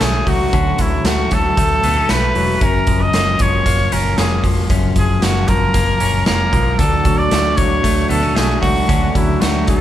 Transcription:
Already playing: clean electric guitar D3 F#3 C#4
0.01 fingered electric bass B1, clean electric guitar A3, trumpet G#4, snare, closed hi-hat
0.26 fingered electric bass C#2, clean electric guitar F#3, trumpet F#4, kick, open hi-hat
0.53 fingered electric bass D2, clean electric guitar D3 C#4, kick, closed hi-hat
0.78 fingered electric bass D2, clean electric guitar F#3, trumpet E4, kick, closed hi-hat
1.04 fingered electric bass D2, clean electric guitar A3, trumpet F#4, snare, closed hi-hat
1.31 fingered electric bass D2, clean electric guitar F#3, trumpet A4, kick, closed hi-hat
1.57 fingered electric bass D2, clean electric guitar A3, kick, closed hi-hat
1.83 fingered electric bass D2, clean electric guitar B3, closed hi-hat
1.97 clean electric guitar C#4
2.09 fingered electric bass B1, clean electric guitar A3, trumpet B4, snare, closed hi-hat
2.35 fingered electric bass E1, clean electric guitar F#3, open hi-hat
2.61 fingered electric bass F#1, clean electric guitar F#2 C#4, trumpet A#4, kick, closed hi-hat
2.87 fingered electric bass F#1, clean electric guitar F3, kick, closed hi-hat
3.02 trumpet D#5
3.13 fingered electric bass F#1, clean electric guitar A#3, snare, closed hi-hat
3.39 fingered electric bass F#1, clean electric guitar F3, trumpet C#5, kick, closed hi-hat
3.66 fingered electric bass F#1, clean electric guitar A#3, kick, closed hi-hat
3.92 fingered electric bass F#1, clean electric guitar C#4, trumpet A#4, closed hi-hat
4.17 fingered electric bass F1, clean electric guitar A#3, trumpet G#4, snare, closed hi-hat
4.44 fingered electric bass F1, clean electric guitar F3, kick, open hi-hat
4.70 fingered electric bass F#1, clean electric guitar F#2 C#4, kick, closed hi-hat
4.96 fingered electric bass F#1, clean electric guitar F3, trumpet G#4, kick, closed hi-hat
5.22 fingered electric bass F#1, clean electric guitar A#3, trumpet F#4, snare, closed hi-hat
5.48 fingered electric bass F#1, clean electric guitar F3, trumpet A#4, kick, closed hi-hat
5.74 fingered electric bass F#1, clean electric guitar A#3, kick, closed hi-hat
6.00 fingered electric bass F#1, clean electric guitar C#4, closed hi-hat
6.26 fingered electric bass F1, clean electric guitar A#3, trumpet A#4, snare, closed hi-hat
6.53 fingered electric bass B1, clean electric guitar F3, kick, closed hi-hat
6.78 fingered electric bass D2, clean electric guitar D3, transistor combo organ A3 D4 F#4, trumpet A4, kick, closed hi-hat
7.05 fingered electric bass D2, clean electric guitar F#3, kick, closed hi-hat
7.18 trumpet D5
7.31 fingered electric bass D2, clean electric guitar A3, snare, closed hi-hat
7.57 fingered electric bass D2, clean electric guitar F#3, trumpet C#5, kick, closed hi-hat
7.83 fingered electric bass D2, clean electric guitar A3, kick, closed hi-hat
8.09 fingered electric bass D2, clean electric guitar B3, trumpet A4, closed hi-hat
8.23 clean electric guitar C#4
8.35 fingered electric bass B1, clean electric guitar A3, trumpet G#4, snare, closed hi-hat
8.61 fingered electric bass C#2, clean electric guitar F#3, trumpet F#4, kick, open hi-hat
8.88 fingered electric bass D2, clean electric guitar D3 C#4, kick, closed hi-hat
9.15 fingered electric bass D2, clean electric guitar F#3, trumpet E4, kick, closed hi-hat
9.40 fingered electric bass D2, clean electric guitar A3, trumpet F#4, snare, closed hi-hat
9.67 fingered electric bass D2, clean electric guitar F#3, trumpet A4, kick, closed hi-hat

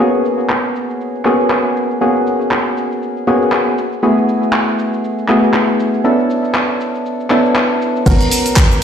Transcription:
0.00 synth stab A#3 B3 C#4 F#4 G#4, cabasa
0.14 cabasa
0.25 cabasa
0.40 cabasa
0.50 clap, cabasa
0.65 cabasa
0.76 cabasa
0.90 cabasa
1.01 cabasa
1.15 cabasa
1.25 synth stab A#3 B3 C#4 F#4 G#4, clap, cabasa
1.40 cabasa
1.50 clap, cabasa
1.66 cabasa
1.76 cabasa
1.91 cabasa
2.01 synth stab A#3 B3 C#4 F#4 G#4, cabasa
2.16 cabasa
2.27 cabasa
2.41 cabasa
2.51 clap, cabasa
2.66 cabasa
2.77 cabasa
2.92 cabasa
3.02 cabasa
3.17 cabasa
3.27 synth stab A#3 B3 C#4 F#4 G#4, cabasa
3.42 cabasa
3.52 clap, cabasa
3.67 cabasa
3.78 cabasa
3.92 cabasa
4.03 synth stab A3 B3 E4 F#4 G#4, cabasa
4.18 cabasa
4.29 cabasa
4.43 cabasa
4.53 clap, cabasa
4.68 cabasa
4.79 cabasa
4.93 cabasa
5.04 cabasa
5.19 cabasa
5.29 synth stab A3 B3 E4 F#4 G#4, clap, cabasa
5.44 cabasa
5.54 clap, cabasa
5.69 cabasa
5.80 cabasa
5.94 cabasa
6.04 synth stab B3 C#4 D4 E4 A4, cabasa
6.19 cabasa
6.30 cabasa
6.45 cabasa
6.55 clap, cabasa
6.70 cabasa
6.81 cabasa
6.95 cabasa
7.06 cabasa
7.20 cabasa
7.30 synth stab B3 C#4 D4 E4 A4, clap, cabasa
7.46 cabasa
7.56 clap, cabasa
7.71 cabasa
7.82 cabasa
7.96 cabasa
8.06 sub bass G#1, synth stab B3 C#4 F#4 A#4, kick, closed hi-hat, crash, cabasa
8.21 closed hi-hat, cabasa
8.31 open hi-hat, cabasa
8.46 closed hi-hat, cabasa
8.56 kick, clap, closed hi-hat, cabasa
8.72 cabasa

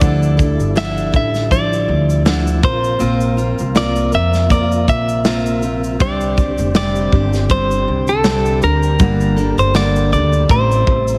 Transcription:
Already playing: tonewheel organ D3 G3, clean electric guitar D5
0.00 upright bass D2, steel-string acoustic guitar D3 F3 D4 E4 A4, tonewheel organ F3 E4, kick, shaker
0.23 shaker
0.37 steel-string acoustic guitar D4 E4 A4, kick, shaker
0.60 upright bass G1, shaker
0.75 steel-string acoustic guitar D3 F3 D4 E4 A4, clean electric guitar E5, snare, shaker
0.97 shaker
1.12 upright bass A1, steel-string acoustic guitar D4 E4 A4, clean electric guitar E5, kick, shaker
1.34 snare, shaker
1.51 steel-string acoustic guitar F3 D4 E4 A4, clean electric guitar D5, kick, shaker
1.73 shaker
1.89 upright bass D2
2.10 shaker
2.25 steel-string acoustic guitar D3 F3 D4 E4 A4, snare, shaker
2.47 shaker
2.63 upright bass A#1, tonewheel organ C3 A#3 F4, steel-string acoustic guitar C4 F4 A#4, clean electric guitar C5, kick, shaker
2.84 shaker
2.99 upright bass A#1, steel-string acoustic guitar A#3 C4 F4 A#4, shaker
3.21 shaker
3.37 steel-string acoustic guitar C4 F4 A#4, shaker
3.59 upright bass C2, shaker
3.75 steel-string acoustic guitar A#3 C4 F4 A#4, clean electric guitar D5, snare, shaker
3.96 shaker
4.12 upright bass F2, steel-string acoustic guitar C4 F4 A#4, clean electric guitar E5, shaker
4.33 snare, shaker
4.49 steel-string acoustic guitar A#3 C4 F4 A#4, clean electric guitar D5, kick, shaker
4.72 shaker
4.88 upright bass A#1, clean electric guitar E5, kick, shaker
5.09 shaker
5.25 steel-string acoustic guitar A#3 C4 F4 A#4, snare, shaker
5.46 shaker
5.62 steel-string acoustic guitar C4 F4 A#4, shaker
5.84 shaker
5.99 upright bass C2, steel-string acoustic guitar C3 G3 C4 D4 G4, tonewheel organ D3 G3 C4 G4, clean electric guitar D5, kick, shaker
6.21 shaker
6.37 steel-string acoustic guitar C4 D4 G4, kick, shaker
6.58 upright bass F1, shaker
6.75 steel-string acoustic guitar C3 G3 C4 D4 G4, clean electric guitar D5, snare, shaker
6.96 shaker
7.12 upright bass G1, steel-string acoustic guitar C4 D4 G4, kick
7.33 snare, shaker
7.50 steel-string acoustic guitar G3 C4 D4 G4, clean electric guitar C5, kick, shaker
7.71 shaker
7.88 upright bass C2
8.07 clean electric guitar A4, shaker
8.24 steel-string acoustic guitar C3 G3 C4 D4 G4, snare, shaker
8.45 shaker
8.62 upright bass D2, steel-string acoustic guitar C4 D4 G4, clean electric guitar A#4, shaker
8.83 shaker
8.99 upright bass G1, steel-string acoustic guitar G2 D3 G3 A#3 D4, tonewheel organ G3 A#3, kick, shaker
9.20 shaker
9.36 steel-string acoustic guitar G3 A#3 D4 A4, shaker
9.58 upright bass G1, clean electric guitar C5, shaker
9.74 steel-string acoustic guitar G2 D3 G3 A#3 D4 A4, clean electric guitar D5, snare, shaker
9.96 shaker
10.13 upright bass D2, steel-string acoustic guitar G3 A#3 D4 A4, clean electric guitar D5, shaker
10.33 shaker
10.48 upright bass A1, tonewheel organ C3 E3 E4, steel-string acoustic guitar A3 C4 E4 A4, clean electric guitar C5, kick, shaker
10.72 shaker
10.87 upright bass A1, kick
11.08 shaker

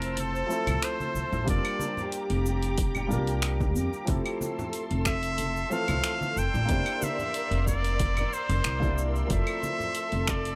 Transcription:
Already playing: upright bass F1, grand piano E3 F3 C4 E4 A5, muted trumpet A#4, string machine C5 A5 E6
0.02 open hi-hat, shaker
0.17 muted trumpet A4, open hi-hat, high conga, shaker
0.35 shaker
0.47 grand piano F3 A3 C4, shaker
0.52 grand piano E4 A4
0.67 upright bass C2, open hi-hat, low conga, claves, shaker
0.82 muted trumpet C5, finger snap, open hi-hat, shaker
1.00 high conga, shaker
1.15 upright bass C2, shaker
1.32 upright bass A1, low conga, shaker
1.44 upright bass F1, grand piano G3 A#3 D4, string machine G4 A#5 D6, kick, open hi-hat
1.49 grand piano F4 A#4, muted trumpet D5, shaker
1.65 open hi-hat, claves
1.80 high bongo, high conga, shaker
1.97 low conga, shaker
2.12 open hi-hat, shaker
2.30 upright bass F1, open hi-hat
2.45 high bongo, shaker
2.63 open hi-hat, shaker
2.78 kick, open hi-hat, high conga, shaker
2.95 low conga, claves, shaker
3.07 upright bass C2, grand piano G3 A#3 D4
3.11 grand piano F4 A#4, shaker
3.27 open hi-hat, shaker
3.42 finger snap, open hi-hat, shaker
3.60 kick, high bongo, high conga, shaker
3.76 upright bass F2, shaker
3.93 shaker
4.05 upright bass F1, grand piano F3 A3 C4, string machine A4 C6 E6, kick, open hi-hat, shaker
4.09 grand piano E4 A4
4.26 open hi-hat, claves
4.41 high bongo, high conga, shaker
4.59 low conga, shaker
4.73 open hi-hat, shaker
4.91 upright bass F1, open hi-hat
5.05 muted trumpet E5, finger snap, kick, high bongo, shaker
5.23 open hi-hat, shaker
5.38 open hi-hat, high conga, shaker
5.56 shaker
5.70 grand piano E3 F3 A3 C4 A4, muted trumpet F5, shaker
5.88 upright bass C2, open hi-hat, low conga, claves, shaker
6.04 finger snap, open hi-hat, shaker
6.21 high conga, shaker
6.35 upright bass F1, string machine A#4 D5, muted trumpet G5, shaker
6.54 upright bass A1, low conga, shaker
6.66 upright bass F1, grand piano A#3 D4 E4, kick, open hi-hat
6.70 grand piano G4 C5, shaker
6.86 open hi-hat, claves
7.01 muted trumpet E5, high bongo, high conga, shaker
7.19 low conga, shaker
7.34 open hi-hat, shaker
7.51 upright bass F1, open hi-hat
7.67 muted trumpet D5, kick, high bongo, shaker
7.84 open hi-hat, shaker
7.99 kick, open hi-hat, high conga, shaker
8.17 open hi-hat, low conga, claves, shaker
8.33 muted trumpet C5, shaker
8.49 upright bass F1, open hi-hat, shaker
8.64 upright bass C2, finger snap, open hi-hat, shaker
8.80 grand piano A#3 D4 E4 G4 D5, kick, high bongo, high conga, shaker
8.98 shaker
9.16 shaker
9.27 upright bass F1, grand piano F3 A3 C4, string machine A4, kick, open hi-hat
9.31 grand piano E4 A4, muted trumpet E5, shaker
9.47 open hi-hat, claves
9.62 high bongo, high conga, shaker
9.80 low conga, shaker
9.95 open hi-hat, shaker
10.12 upright bass F1, open hi-hat
10.27 muted trumpet D5, finger snap, kick, high bongo, shaker
10.45 open hi-hat, shaker

